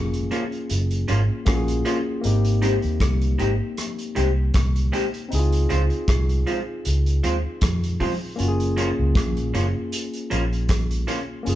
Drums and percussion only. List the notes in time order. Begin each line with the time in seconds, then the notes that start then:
0.14 closed hi-hat
0.31 closed hi-hat
0.52 closed hi-hat
0.70 closed hi-hat
0.91 closed hi-hat
1.08 closed hi-hat
1.46 kick, cross-stick, closed hi-hat
1.68 closed hi-hat
1.85 closed hi-hat
2.24 closed hi-hat
2.44 closed hi-hat
2.62 closed hi-hat
2.82 closed hi-hat
3.00 kick, cross-stick, closed hi-hat
3.21 closed hi-hat
3.39 closed hi-hat
3.77 cross-stick, closed hi-hat
3.98 closed hi-hat
4.16 closed hi-hat
4.54 kick, cross-stick, closed hi-hat
4.76 closed hi-hat
4.93 closed hi-hat
5.14 closed hi-hat
5.32 closed hi-hat
5.52 closed hi-hat
5.70 closed hi-hat
5.90 closed hi-hat
6.08 kick, cross-stick, closed hi-hat
6.29 closed hi-hat
6.47 closed hi-hat
6.85 closed hi-hat
7.06 closed hi-hat
7.24 closed hi-hat
7.61 kick, cross-stick, closed hi-hat
7.84 closed hi-hat
8.00 kick, open hi-hat
8.39 closed hi-hat
8.60 closed hi-hat
8.77 closed hi-hat
9.15 kick, cross-stick, closed hi-hat
9.37 closed hi-hat
9.54 closed hi-hat
9.92 closed hi-hat
10.13 closed hi-hat
10.31 closed hi-hat
10.53 closed hi-hat
10.69 kick, cross-stick, closed hi-hat
10.91 closed hi-hat
11.08 closed hi-hat
11.46 closed hi-hat